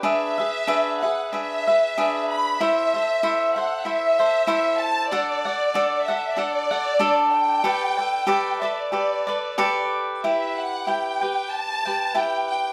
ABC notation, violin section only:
X:1
M:4/4
L:1/16
Q:"Swing" 1/4=94
K:G
V:1 name="Violin section"
e6 f2 e6 b2 | e6 f2 e6 a2 | d6 e2 d6 g2- | g6 e d6- d z2 |
[K:Em] e2 f2 g4 a4 g2 g2 |]